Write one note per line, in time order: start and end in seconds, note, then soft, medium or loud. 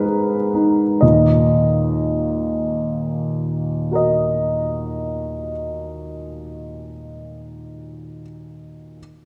0.00 0.98 G#2 soft
0.00 1.04 G#3 soft
0.00 0.34 D#4 soft
0.00 0.06 G#4 soft
0.00 1.05 A#4 medium
0.00 1.01 B4 soft
0.06 0.83 G#4 soft
0.54 1.02 D#4 soft
1.01 5.51 D#2 soft
1.01 5.51 A#2 soft
1.01 3.94 D#5 soft
3.91 8.22 F#4 soft
3.91 8.23 A#4 soft
3.95 8.24 D#5 soft